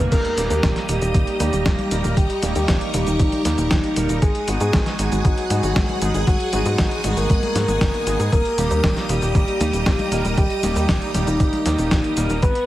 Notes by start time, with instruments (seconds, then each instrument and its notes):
Already playing: analog polysynth G3 A#3 D#4 A#4
0.12 analog synth bass D#1, string machine G4 D#5 A#5 D#6, soft synth lead A#4, kick, closed hi-hat, crash, cabasa
0.25 closed hi-hat
0.37 analog synth bass D#1, analog polysynth G3 A#3 D#4 G4, closed hi-hat, cabasa
0.50 analog synth bass D#2, soft synth lead A#4, closed hi-hat, cabasa
0.63 analog synth bass D#1, kick, snare, closed hi-hat, cabasa
0.76 snare, closed hi-hat
0.89 analog synth bass D#1, analog polysynth G3 A#3 D#4 G4, closed hi-hat, cabasa
1.01 analog synth bass D#1, soft synth lead G4, closed hi-hat, cabasa
1.14 analog synth bass D#1, kick, closed hi-hat, cabasa
1.27 closed hi-hat
1.40 analog synth bass D#2, analog polysynth G3 A#3 D#4 G4, closed hi-hat, high conga, cabasa
1.53 analog synth bass D#1, closed hi-hat, cabasa
1.66 analog synth bass D#1, kick, snare, closed hi-hat, cabasa
1.79 closed hi-hat, high conga
1.91 analog synth bass D#1, analog polysynth G3 A#3 D#4 A#4, closed hi-hat, cabasa
2.04 analog synth bass D#1, closed hi-hat, high conga, cabasa
2.17 analog synth bass D#1, soft synth lead G4, string machine C#6, kick, closed hi-hat, cabasa
2.30 closed hi-hat
2.43 analog synth bass D#1, analog polysynth G3 A#3 D#4 G4, closed hi-hat, high conga, cabasa
2.55 analog synth bass D#2, soft synth lead G4, closed hi-hat, cabasa
2.68 analog synth bass D#1, kick, snare, closed hi-hat, cabasa
2.81 closed hi-hat
2.94 analog synth bass D#1, analog polysynth G3 A#3 D#4 G4, closed hi-hat, high conga, cabasa
3.07 analog synth bass D#1, soft synth lead D#4, closed hi-hat, cabasa
3.20 analog synth bass D#1, kick, closed hi-hat, cabasa
3.32 closed hi-hat, high conga
3.45 analog synth bass D#2, analog polysynth G3 A#3 D#4 G4, snare, closed hi-hat, high conga, cabasa
3.58 analog synth bass D#1, closed hi-hat, cabasa
3.71 analog synth bass D#1, kick, snare, closed hi-hat, cabasa
3.84 closed hi-hat
3.96 analog synth bass D#1, analog polysynth G3 A#3 D#4 A#4, closed hi-hat, cabasa
4.09 analog synth bass D#1, closed hi-hat, cabasa
4.22 analog synth bass G#1, soft synth lead G#4, string machine G#4 F#5 G#5 D#6, kick, closed hi-hat, cabasa
4.35 closed hi-hat
4.48 analog synth bass G#1, analog polysynth G#3 B3 D#4 F#4, closed hi-hat, cabasa
4.60 analog synth bass G#2, soft synth lead G#4, closed hi-hat, cabasa
4.73 analog synth bass G#1, kick, snare, closed hi-hat, cabasa
4.86 snare, closed hi-hat
4.99 analog synth bass G#1, analog polysynth G#3 B3 D#4 F#4, closed hi-hat, cabasa
5.12 analog synth bass G#1, soft synth lead F#4, closed hi-hat, cabasa
5.25 analog synth bass G#1, kick, closed hi-hat, cabasa
5.38 closed hi-hat
5.50 analog synth bass G#2, analog polysynth G#3 B3 D#4 F#4, closed hi-hat, high conga, cabasa
5.63 analog synth bass G#1, closed hi-hat, cabasa
5.76 analog synth bass G#1, kick, snare, closed hi-hat, cabasa
5.89 closed hi-hat, high conga
6.01 analog synth bass G#1, analog polysynth G#3 B3 D#4 G#4, closed hi-hat, cabasa
6.14 analog synth bass G#1, closed hi-hat, high conga, cabasa
6.27 analog synth bass G#1, soft synth lead F#4, kick, closed hi-hat, cabasa
6.40 closed hi-hat
6.53 analog synth bass G#1, analog polysynth G#3 B3 D#4 F#4, closed hi-hat, high conga, cabasa
6.66 analog synth bass G#2, soft synth lead F#4, closed hi-hat, cabasa
6.78 analog synth bass G#1, kick, snare, closed hi-hat, cabasa
6.91 closed hi-hat
7.04 analog synth bass G#1, analog polysynth G#3 B3 D#4 F#4, closed hi-hat, high conga, cabasa
7.17 analog synth bass G#1, soft synth lead A#4, closed hi-hat, cabasa
7.30 analog synth bass G#1, kick, closed hi-hat, cabasa
7.43 closed hi-hat, high conga
7.55 analog synth bass G#2, analog polysynth G#3 B3 D#4 F#4, snare, closed hi-hat, high conga, cabasa
7.68 analog synth bass G#1, closed hi-hat, cabasa
7.81 analog synth bass F#1, kick, snare, closed hi-hat, cabasa
7.94 closed hi-hat
8.07 analog synth bass G#1, analog polysynth G#3 B3 D#4 G#4, closed hi-hat, cabasa
8.20 analog synth bass G#2, closed hi-hat, cabasa
8.32 analog synth bass D#1, string machine G4 D#5 A#5, soft synth lead A#4, kick, closed hi-hat, cabasa
8.45 closed hi-hat
8.58 analog synth bass D#1, analog polysynth G3 A#3 D#4 G4, closed hi-hat, cabasa
8.71 analog synth bass D#2, soft synth lead A#4, closed hi-hat, cabasa
8.84 analog synth bass D#1, kick, snare, closed hi-hat, cabasa
8.97 snare, closed hi-hat
9.09 analog synth bass D#1, analog polysynth G3 A#3 D#4 G4, closed hi-hat, cabasa
9.22 analog synth bass D#1, soft synth lead G4, closed hi-hat, cabasa
9.35 analog synth bass D#1, kick, closed hi-hat, cabasa
9.48 closed hi-hat
9.60 analog synth bass D#2, analog polysynth G3 A#3 D#4 G4, closed hi-hat, high conga, cabasa
9.73 analog synth bass D#1, closed hi-hat, cabasa
9.86 analog synth bass D#1, kick, snare, closed hi-hat, cabasa
9.99 closed hi-hat, high conga
10.12 analog synth bass D#1, analog polysynth G3 A#3 D#4 A#4, closed hi-hat, cabasa
10.25 analog synth bass D#1, closed hi-hat, high conga, cabasa
10.37 analog synth bass D#1, soft synth lead G4, kick, closed hi-hat, cabasa
10.50 closed hi-hat
10.63 analog synth bass D#1, analog polysynth G3 A#3 D#4 G4, closed hi-hat, high conga, cabasa
10.76 analog synth bass D#2, soft synth lead G4, closed hi-hat, cabasa
10.89 analog synth bass D#1, kick, snare, closed hi-hat, cabasa
11.02 closed hi-hat
11.14 analog synth bass D#1, analog polysynth G3 A#3 D#4 G4, closed hi-hat, high conga, cabasa
11.27 analog synth bass D#1, soft synth lead D#4, closed hi-hat, cabasa
11.40 analog synth bass D#1, kick, closed hi-hat, cabasa
11.53 closed hi-hat, high conga
11.66 analog synth bass D#2, analog polysynth G3 A#3 D#4 G4, snare, closed hi-hat, high conga, cabasa
11.78 analog synth bass D#1, closed hi-hat, cabasa
11.91 analog synth bass D#1, kick, snare, closed hi-hat, cabasa
12.04 closed hi-hat
12.17 analog synth bass D#1, analog polysynth G3 A#3 D#4 A#4, closed hi-hat, cabasa
12.30 analog synth bass D#1, closed hi-hat, cabasa
12.42 analog synth bass G#1, string machine G#4 F#5 G#5 D#6, soft synth lead B4, kick, closed hi-hat, cabasa
12.55 closed hi-hat